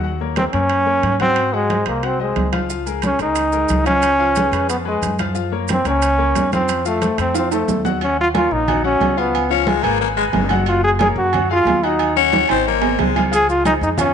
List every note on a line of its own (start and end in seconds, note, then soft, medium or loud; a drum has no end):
0.00 0.47 D#2 medium
0.00 0.17 F#3 medium
0.00 0.17 F#4 medium
0.00 high conga soft
0.04 0.18 F#5 medium
0.20 0.48 A#3 medium
0.20 0.48 A#4 medium
0.20 0.48 C#5 medium
0.20 high conga soft
0.36 0.45 C4 medium
0.36 high conga medium
0.36 high timbale medium
0.53 1.00 F#2 medium
0.53 0.81 A#3 medium
0.53 1.16 C#4 loud
0.53 0.81 A#4 medium
0.53 0.81 C#5 medium
0.53 high conga soft
0.53 high timbale medium
0.70 high conga soft
0.70 high timbale medium
0.86 1.14 A#3 medium
0.86 1.14 A#4 medium
0.86 1.14 C#5 medium
0.86 high conga soft
1.03 1.81 G#2 medium
1.03 high conga medium
1.03 high timbale medium
1.20 1.47 F#3 medium
1.20 1.55 C4 loud
1.20 1.47 F#4 medium
1.20 1.48 F#5 medium
1.20 high conga medium
1.20 high timbale medium
1.36 high conga soft
1.36 high timbale medium
1.53 1.67 F#3 medium
1.53 1.87 G#3 medium
1.53 1.67 F#4 medium
1.53 1.67 F#5 medium
1.53 high conga soft
1.70 1.84 C4 medium
1.70 1.85 C5 medium
1.70 1.85 D#5 medium
1.70 high conga medium
1.70 high timbale medium
1.86 2.33 C2 medium
1.86 2.06 A#3 medium
1.86 2.01 C4 medium
1.86 2.01 C5 medium
1.86 2.01 D#5 medium
1.86 high conga soft
1.86 high timbale medium
2.03 2.17 F#3 medium
2.03 2.21 C4 medium
2.03 2.17 F#4 medium
2.03 2.17 F#5 medium
2.03 high conga soft
2.03 high timbale medium
2.20 2.52 G#3 medium
2.20 2.47 C4 medium
2.20 2.47 C5 medium
2.20 2.48 D#5 medium
2.20 high conga soft
2.36 3.14 C#2 medium
2.36 high conga medium
2.36 high timbale medium
2.36 low timbale medium
2.52 2.66 F3 medium
2.52 2.67 F4 medium
2.52 2.67 F5 medium
2.52 high conga medium
2.52 high timbale medium
2.70 2.83 F3 medium
2.70 2.83 F4 medium
2.70 2.84 F5 medium
2.70 high conga soft
2.70 maracas medium
2.86 3.14 G#3 medium
2.86 3.14 G#4 medium
2.86 3.14 A#4 medium
2.86 high conga soft
2.86 maracas soft
3.02 3.20 C#4 medium
3.02 high conga medium
3.02 high timbale medium
3.02 maracas medium
3.19 3.66 C#2 medium
3.19 3.47 G#3 medium
3.19 3.84 D#4 medium
3.19 3.47 G#4 medium
3.19 3.47 A#4 medium
3.19 high conga soft
3.19 high timbale medium
3.19 maracas soft
3.36 high conga soft
3.36 high timbale medium
3.36 maracas medium
3.52 3.80 G#3 medium
3.52 3.80 G#4 medium
3.52 3.80 A#4 medium
3.52 high conga soft
3.52 maracas medium
3.68 4.47 C#2 medium
3.68 high conga medium
3.68 high timbale medium
3.68 maracas medium
3.85 4.13 F3 medium
3.85 4.66 C#4 loud
3.85 4.13 F4 medium
3.85 4.13 F5 medium
3.85 high conga medium
3.85 high timbale medium
3.85 maracas soft
4.02 high conga soft
4.02 high timbale medium
4.02 maracas medium
4.19 4.33 F3 medium
4.19 4.33 F4 medium
4.19 4.33 F5 medium
4.19 high conga soft
4.36 4.50 G#3 medium
4.36 4.50 G#4 medium
4.36 4.51 B4 medium
4.36 high conga medium
4.36 high timbale medium
4.36 maracas medium
4.52 4.99 F2 medium
4.52 4.67 G#3 medium
4.52 4.67 G#4 medium
4.52 4.67 B4 medium
4.52 high conga soft
4.52 high timbale medium
4.52 maracas soft
4.69 4.83 F3 medium
4.69 4.77 B3 medium
4.69 4.83 F4 medium
4.69 4.83 F5 medium
4.69 high conga soft
4.69 high timbale medium
4.69 maracas medium
4.85 5.13 G#3 medium
4.85 5.18 G#3 medium
4.85 5.13 G#4 medium
4.85 5.13 B4 medium
4.85 high conga soft
5.01 5.80 F#2 medium
5.01 high conga medium
5.01 high timbale medium
5.01 maracas medium
5.19 5.33 F3 medium
5.19 5.33 F4 medium
5.19 5.33 F5 medium
5.19 high conga medium
5.19 high timbale medium
5.19 maracas soft
5.35 5.49 F3 medium
5.35 5.49 F4 medium
5.35 5.49 F5 medium
5.35 high conga soft
5.35 maracas medium
5.52 5.79 A#3 medium
5.52 5.80 A#4 medium
5.52 5.80 C#5 medium
5.52 high conga soft
5.68 5.86 C4 loud
5.68 high conga medium
5.68 high timbale medium
5.68 maracas medium
5.85 6.32 C#2 medium
5.85 6.13 A#3 medium
5.85 6.49 C#4 loud
5.85 6.13 A#4 medium
5.85 6.14 C#5 medium
5.85 high conga soft
5.85 high timbale medium
5.85 maracas soft
6.02 high conga soft
6.02 high timbale medium
6.02 maracas medium
6.18 6.46 A#3 medium
6.18 6.46 A#4 medium
6.18 6.46 C#5 medium
6.18 high conga soft
6.35 7.13 F2 medium
6.35 high conga medium
6.35 high timbale medium
6.35 low timbale medium
6.35 maracas medium
6.52 6.80 F3 medium
6.52 6.84 C4 loud
6.52 6.80 F4 medium
6.52 6.80 F5 medium
6.52 high conga medium
6.52 high timbale medium
6.52 maracas soft
6.68 high conga soft
6.68 high timbale medium
6.68 maracas medium
6.85 6.99 F3 medium
6.85 7.17 A3 medium
6.85 6.99 F4 medium
6.85 6.99 F5 medium
6.85 high conga soft
6.85 maracas medium
7.01 7.15 A3 medium
7.01 7.15 A4 medium
7.01 7.16 C5 medium
7.01 high conga medium
7.01 high timbale medium
7.01 maracas medium
7.18 7.65 F2 medium
7.18 7.32 A3 medium
7.18 7.35 C4 medium
7.18 7.32 A4 medium
7.18 7.32 C5 medium
7.18 high conga soft
7.18 high timbale medium
7.18 maracas soft
7.34 7.48 F3 medium
7.34 7.52 C4 medium
7.34 7.49 F4 medium
7.34 7.49 F5 medium
7.34 high conga soft
7.34 high timbale medium
7.34 maracas medium
7.51 7.79 A3 medium
7.51 7.83 A3 medium
7.51 7.79 A4 medium
7.51 7.80 C5 medium
7.51 high conga soft
7.51 high timbale medium
7.51 maracas medium
7.68 8.45 D#2 medium
7.68 high conga medium
7.68 low timbale medium
7.68 maracas medium
7.85 7.99 F#3 medium
7.85 7.99 F#4 medium
7.85 7.99 F#5 medium
7.85 high conga medium
7.85 low timbale medium
7.85 maracas soft
8.01 8.29 F#3 medium
8.01 8.18 C#4 medium
8.01 8.29 F#4 medium
8.01 8.29 F#5 medium
8.01 high conga soft
8.01 low agogo medium
8.18 8.28 F4 loud
8.18 high conga soft
8.34 8.62 A#3 medium
8.34 8.54 F4 loud
8.34 8.62 A#4 medium
8.34 8.62 C#5 medium
8.34 high conga medium
8.34 low timbale medium
8.34 low agogo loud
8.51 8.97 A#1 medium
8.51 8.85 D#4 medium
8.51 high conga soft
8.68 8.81 F#3 medium
8.68 8.82 F#4 medium
8.68 8.82 F#5 medium
8.68 high conga soft
8.68 low conga medium
8.68 low agogo loud
8.84 9.11 F#3 medium
8.84 9.20 C#4 loud
8.84 9.12 F#4 medium
8.84 9.12 F#5 medium
8.84 high conga soft
9.01 9.78 C#2 medium
9.01 high conga medium
9.01 low timbale medium
9.01 low agogo medium
9.17 9.44 F3 medium
9.17 9.51 B3 medium
9.17 9.44 F4 medium
9.17 9.45 F5 medium
9.17 low agogo medium
9.34 high conga soft
9.34 low agogo loud
9.50 9.77 F3 medium
9.50 9.69 C#4 medium
9.50 9.78 F4 medium
9.50 9.78 F5 medium
9.50 high conga soft
9.67 9.84 G#3 medium
9.67 high conga medium
9.67 low timbale medium
9.67 low agogo medium
9.83 10.30 G#1 loud
9.83 9.98 G#3 medium
9.83 10.00 A#3 loud
9.83 9.98 G#4 medium
9.83 9.98 B4 medium
9.83 low agogo loud
10.00 10.14 G#3 medium
10.00 10.08 A#3 medium
10.00 10.14 G#4 medium
10.00 10.14 B4 medium
10.00 high conga soft
10.17 10.24 G#3 medium
10.17 10.44 G#3 medium
10.17 10.44 G#4 medium
10.17 10.44 B4 medium
10.17 high conga soft
10.17 low agogo medium
10.33 11.10 F#1 loud
10.33 10.57 G#3 medium
10.33 high conga medium
10.33 low timbale medium
10.33 low agogo medium
10.49 10.63 F#3 medium
10.49 10.64 F#4 medium
10.49 10.64 F#5 medium
10.49 high conga medium
10.49 low agogo loud
10.66 10.94 F#3 medium
10.66 10.83 F4 medium
10.66 10.94 F#4 medium
10.66 10.94 F#5 medium
10.66 low agogo medium
10.84 10.91 G#4 loud
10.84 high conga soft
10.99 11.27 A#3 medium
10.99 11.08 G#4 medium
10.99 11.27 A#4 medium
10.99 11.27 C#5 medium
10.99 high conga medium
10.99 low timbale medium
10.99 low agogo loud
11.16 11.62 F#2 loud
11.16 11.48 F#4 loud
11.16 high conga soft
11.33 11.47 F#3 medium
11.33 11.47 F#4 medium
11.33 11.47 F#5 medium
11.33 high conga soft
11.33 low conga medium
11.33 low agogo loud
11.50 11.76 F#3 medium
11.50 11.86 F4 loud
11.50 11.77 G#4 medium
11.50 11.77 F5 medium
11.50 high conga soft
11.65 12.43 D#2 loud
11.65 high conga medium
11.65 low timbale medium
11.65 low agogo medium
11.83 12.10 F#3 medium
11.83 12.16 D#4 medium
11.83 12.10 F#4 medium
11.83 12.10 F#5 medium
11.83 low agogo medium
11.99 high conga soft
11.99 low agogo loud
12.16 12.43 F#3 medium
12.16 12.47 C#4 loud
12.16 12.43 F#4 medium
12.16 12.43 F#5 medium
12.16 high conga soft
12.33 high conga medium
12.33 high timbale medium
12.33 low agogo medium
12.49 12.95 G#1 medium
12.49 12.63 C4 medium
12.49 12.65 C4 loud
12.49 12.62 C5 medium
12.49 12.63 D#5 medium
12.49 high timbale loud
12.49 low agogo loud
12.66 13.01 A#3 medium
12.66 12.79 C4 medium
12.66 12.79 C5 medium
12.66 12.80 D#5 medium
12.66 high conga soft
12.81 13.09 C4 medium
12.81 13.09 C5 medium
12.81 13.09 D#5 medium
12.81 high conga soft
12.81 low timbale medium
12.81 low agogo medium
12.99 13.75 C#2 medium
12.99 13.24 G#3 medium
12.99 high conga medium
12.99 low timbale loud
12.99 low agogo medium
13.15 13.29 F3 medium
13.15 13.29 F4 medium
13.15 13.29 F5 medium
13.15 high conga medium
13.15 low timbale medium
13.15 low agogo loud
13.31 13.58 F3 medium
13.31 13.59 F4 medium
13.31 13.48 G#4 loud
13.31 13.59 F5 medium
13.31 high conga soft
13.31 low agogo medium
13.31 maracas medium
13.49 13.64 F4 medium
13.49 high conga soft
13.49 maracas soft
13.64 13.91 G#3 medium
13.64 13.73 D#4 medium
13.64 13.92 G#4 medium
13.64 13.92 C5 medium
13.64 high conga medium
13.64 low timbale medium
13.64 low agogo loud
13.64 maracas medium
13.81 14.14 F2 medium
13.81 13.90 D#4 medium
13.81 high conga soft
13.81 maracas soft
13.97 14.11 F3 medium
13.97 14.14 C#4 medium
13.97 14.11 F4 medium
13.97 14.11 F5 medium
13.97 high conga soft
13.97 low conga medium
13.97 low agogo loud
13.97 maracas medium